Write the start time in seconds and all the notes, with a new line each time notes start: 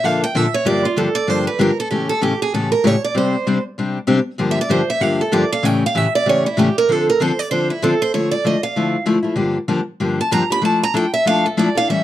0.03 A#2 D3 F3 A#3 D4 A4 F5
0.24 G5
0.35 A#2 D3 F3 A#3 D4 A4 E5
0.54 C#5
0.65 G2 D3 F3 A#3 D4 G4 D5
0.85 F4
0.96 G2 D3 F3 A#3 D4 G4 A4
1.15 D5
1.27 G2 D3 F3 A#3 D4 G4 C5
1.47 B4
1.59 G2 D3 F3 A#3 D4 G4 A#4
1.80 A4
1.91 A2 C#3 E3 A3 C#4 G4
2.09 A4
2.21 A2 C#3 E3 A3 C#4 G4
2.42 G#4
2.54 A2 C#3 E3 A3 C#4 G4 A4
2.72 A#4
2.84 A2 C#3 E3 A3 C#4 G4 C#5
3.04 D5
3.15 C3 G3 C4 D4 G4 C5
3.47 C3 G3 C4 D4 G4
3.78 C3 G3 C4 D4 G4
4.07 C3 G3 C4 D4 G4
4.38 G2 D3 F3 A#3 D4 G4
4.51 E5
4.61 D5
4.69 G2 D3 F3 A#3 D4 G4 C5
4.90 E5
5.00 G2 D3 F3 A#3 D4 G4 F5
5.21 A4
5.32 G2 D3 F3 A#3 D4 G4 D5
5.52 F5
5.63 A2 C#3 E3 A3 C#4 G4 G5
5.86 F5
5.95 A2 C#3 E3 A3 C#4 G4 E5
6.15 D5
6.26 A2 C#3 E3 A3 C#4 G4 C#5
6.46 E4
6.57 A2 C#3 E3 A3 C#4 G4
6.78 A#4
6.89 D3 F3 C4 D4 A4
7.10 A#4
7.20 D3 F3 C4 D4 A4 C5
7.39 D5
7.51 D3 F3 C4 D4 A4 C5
7.70 E4
7.82 D3 F3 C4 D4 A4
8.02 C5
8.14 D3 F3 A3 E4 C#5
8.31 D5
8.45 D3 F3 A3 E4 D#5
8.63 F5
8.76 D3 F3 A3 E4
9.06 D3 F3 A3 E4
9.23 F3 A3 E4
9.35 G2 D3 F3 A#3 D4 G4
9.68 G2 D3 F3 A#3 D4 G4
10.00 G2 D3 F3 A#3 D4 G4
10.21 A5
10.31 G2 D3 F3 A#3 D4 G4 A#5
10.50 F3 A#3 D4 G4 B5
10.62 F3 A3 D4 E4 A4 A5
10.83 A#5
10.94 F3 A3 D4 E4 A4 G5
11.14 E5
11.25 F3 A3 D4 E4 A4 F5
11.46 A4
11.57 F3 A3 D4 E4 A4 D5
11.75 D4 E4 A4 F5
11.89 A2 E3 G3 C#4 E4 A4 E5